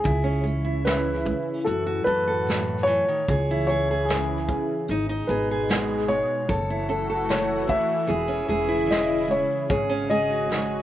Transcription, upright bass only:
0, 0, Header, 1, 2, 480
1, 0, Start_track
1, 0, Key_signature, 4, "minor"
1, 0, Tempo, 803213
1, 35, Time_signature, 4, 2, 24, 8
1, 6466, End_track
2, 0, Start_track
2, 0, Title_t, "Upright bass"
2, 0, Program_c, 0, 32
2, 33, Note_on_c, 0, 37, 82
2, 779, Note_off_c, 0, 37, 0
2, 999, Note_on_c, 0, 42, 77
2, 1186, Note_off_c, 0, 42, 0
2, 1235, Note_on_c, 0, 42, 80
2, 1794, Note_off_c, 0, 42, 0
2, 1964, Note_on_c, 0, 37, 87
2, 2702, Note_off_c, 0, 37, 0
2, 2922, Note_on_c, 0, 32, 85
2, 3106, Note_off_c, 0, 32, 0
2, 3160, Note_on_c, 0, 32, 78
2, 3713, Note_off_c, 0, 32, 0
2, 3877, Note_on_c, 0, 30, 99
2, 4616, Note_off_c, 0, 30, 0
2, 4838, Note_on_c, 0, 28, 86
2, 5021, Note_off_c, 0, 28, 0
2, 5074, Note_on_c, 0, 28, 82
2, 5629, Note_off_c, 0, 28, 0
2, 5799, Note_on_c, 0, 32, 88
2, 6466, Note_off_c, 0, 32, 0
2, 6466, End_track
0, 0, End_of_file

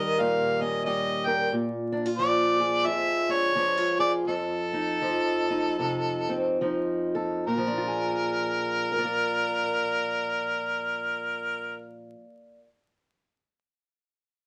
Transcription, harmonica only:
0, 0, Header, 1, 2, 480
1, 0, Start_track
1, 0, Tempo, 674157
1, 1077, Time_signature, 4, 2, 24, 8
1, 2530, Tempo, 729040
1, 3490, Tempo, 776197
1, 3970, Tempo, 817439
1, 4450, Tempo, 869565
1, 4930, Tempo, 896861
1, 8672, End_track
2, 0, Start_track
2, 0, Title_t, "Harmonica"
2, 0, Program_c, 0, 22
2, 0, Note_on_c, 0, 75, 87
2, 144, Note_on_c, 0, 77, 101
2, 154, Note_off_c, 0, 75, 0
2, 439, Note_on_c, 0, 75, 90
2, 449, Note_off_c, 0, 77, 0
2, 605, Note_off_c, 0, 75, 0
2, 610, Note_on_c, 0, 75, 93
2, 898, Note_on_c, 0, 79, 91
2, 909, Note_off_c, 0, 75, 0
2, 1079, Note_off_c, 0, 79, 0
2, 1552, Note_on_c, 0, 74, 108
2, 2041, Note_on_c, 0, 76, 118
2, 2051, Note_off_c, 0, 74, 0
2, 2360, Note_on_c, 0, 73, 110
2, 2371, Note_off_c, 0, 76, 0
2, 2819, Note_off_c, 0, 73, 0
2, 2823, Note_on_c, 0, 74, 95
2, 2904, Note_off_c, 0, 74, 0
2, 3007, Note_on_c, 0, 69, 94
2, 4429, Note_off_c, 0, 69, 0
2, 4927, Note_on_c, 0, 70, 89
2, 7256, Note_off_c, 0, 70, 0
2, 8672, End_track
0, 0, End_of_file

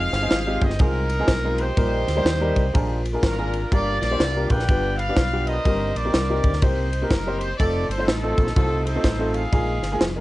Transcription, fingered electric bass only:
0, 0, Header, 1, 2, 480
1, 0, Start_track
1, 0, Tempo, 484653
1, 1759, Time_signature, 4, 2, 24, 8
1, 10107, End_track
2, 0, Start_track
2, 0, Title_t, "Fingered electric bass"
2, 0, Program_c, 0, 33
2, 125, Note_on_c, 0, 31, 101
2, 283, Note_off_c, 0, 31, 0
2, 307, Note_on_c, 0, 32, 89
2, 566, Note_off_c, 0, 32, 0
2, 609, Note_on_c, 0, 31, 100
2, 766, Note_off_c, 0, 31, 0
2, 788, Note_on_c, 0, 36, 104
2, 1201, Note_off_c, 0, 36, 0
2, 1267, Note_on_c, 0, 35, 96
2, 1680, Note_off_c, 0, 35, 0
2, 1756, Note_on_c, 0, 34, 101
2, 2012, Note_off_c, 0, 34, 0
2, 2056, Note_on_c, 0, 38, 90
2, 2210, Note_off_c, 0, 38, 0
2, 2226, Note_on_c, 0, 39, 99
2, 2486, Note_off_c, 0, 39, 0
2, 2539, Note_on_c, 0, 36, 91
2, 2692, Note_off_c, 0, 36, 0
2, 2722, Note_on_c, 0, 34, 92
2, 3129, Note_off_c, 0, 34, 0
2, 3195, Note_on_c, 0, 32, 89
2, 3605, Note_off_c, 0, 32, 0
2, 3686, Note_on_c, 0, 31, 109
2, 3938, Note_off_c, 0, 31, 0
2, 3977, Note_on_c, 0, 34, 107
2, 4131, Note_off_c, 0, 34, 0
2, 4156, Note_on_c, 0, 36, 96
2, 4412, Note_off_c, 0, 36, 0
2, 4459, Note_on_c, 0, 34, 112
2, 4612, Note_off_c, 0, 34, 0
2, 4640, Note_on_c, 0, 31, 91
2, 5047, Note_off_c, 0, 31, 0
2, 5110, Note_on_c, 0, 35, 91
2, 5522, Note_off_c, 0, 35, 0
2, 5601, Note_on_c, 0, 31, 118
2, 5854, Note_off_c, 0, 31, 0
2, 5893, Note_on_c, 0, 34, 86
2, 6049, Note_off_c, 0, 34, 0
2, 6080, Note_on_c, 0, 36, 94
2, 6333, Note_off_c, 0, 36, 0
2, 6376, Note_on_c, 0, 38, 103
2, 6530, Note_off_c, 0, 38, 0
2, 6558, Note_on_c, 0, 36, 95
2, 6965, Note_off_c, 0, 36, 0
2, 7033, Note_on_c, 0, 30, 94
2, 7442, Note_off_c, 0, 30, 0
2, 7525, Note_on_c, 0, 29, 117
2, 7776, Note_off_c, 0, 29, 0
2, 7808, Note_on_c, 0, 31, 83
2, 7965, Note_off_c, 0, 31, 0
2, 7991, Note_on_c, 0, 33, 92
2, 8247, Note_off_c, 0, 33, 0
2, 8295, Note_on_c, 0, 34, 94
2, 8449, Note_off_c, 0, 34, 0
2, 8480, Note_on_c, 0, 36, 94
2, 8886, Note_off_c, 0, 36, 0
2, 8946, Note_on_c, 0, 33, 85
2, 9358, Note_off_c, 0, 33, 0
2, 9435, Note_on_c, 0, 34, 123
2, 9690, Note_off_c, 0, 34, 0
2, 9724, Note_on_c, 0, 31, 81
2, 9882, Note_off_c, 0, 31, 0
2, 9905, Note_on_c, 0, 29, 94
2, 10107, Note_off_c, 0, 29, 0
2, 10107, End_track
0, 0, End_of_file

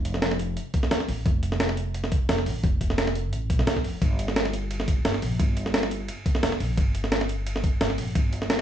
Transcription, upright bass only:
0, 0, Header, 1, 2, 480
1, 0, Start_track
1, 0, Tempo, 344828
1, 1751, Time_signature, 4, 2, 24, 8
1, 11993, End_track
2, 0, Start_track
2, 0, Title_t, "Upright bass"
2, 0, Program_c, 0, 32
2, 0, Note_on_c, 0, 29, 106
2, 773, Note_off_c, 0, 29, 0
2, 1269, Note_on_c, 0, 39, 87
2, 1510, Note_on_c, 0, 33, 90
2, 1531, Note_off_c, 0, 39, 0
2, 1728, Note_off_c, 0, 33, 0
2, 1750, Note_on_c, 0, 29, 101
2, 3058, Note_off_c, 0, 29, 0
2, 3189, Note_on_c, 0, 29, 99
2, 3408, Note_off_c, 0, 29, 0
2, 3429, Note_on_c, 0, 33, 85
2, 3648, Note_off_c, 0, 33, 0
2, 3669, Note_on_c, 0, 29, 101
2, 4631, Note_off_c, 0, 29, 0
2, 4631, Note_on_c, 0, 33, 104
2, 5000, Note_off_c, 0, 33, 0
2, 5000, Note_on_c, 0, 36, 100
2, 5103, Note_off_c, 0, 36, 0
2, 5112, Note_on_c, 0, 36, 101
2, 5353, Note_off_c, 0, 36, 0
2, 5353, Note_on_c, 0, 29, 93
2, 5569, Note_off_c, 0, 29, 0
2, 5591, Note_on_c, 0, 31, 105
2, 6898, Note_off_c, 0, 31, 0
2, 7030, Note_on_c, 0, 31, 103
2, 7248, Note_off_c, 0, 31, 0
2, 7271, Note_on_c, 0, 34, 87
2, 7488, Note_off_c, 0, 34, 0
2, 7511, Note_on_c, 0, 31, 101
2, 8453, Note_off_c, 0, 31, 0
2, 8950, Note_on_c, 0, 29, 88
2, 9191, Note_on_c, 0, 34, 92
2, 9212, Note_off_c, 0, 29, 0
2, 9408, Note_off_c, 0, 34, 0
2, 9430, Note_on_c, 0, 31, 105
2, 10738, Note_off_c, 0, 31, 0
2, 10870, Note_on_c, 0, 31, 105
2, 11088, Note_off_c, 0, 31, 0
2, 11109, Note_on_c, 0, 34, 83
2, 11328, Note_off_c, 0, 34, 0
2, 11350, Note_on_c, 0, 31, 106
2, 11993, Note_off_c, 0, 31, 0
2, 11993, End_track
0, 0, End_of_file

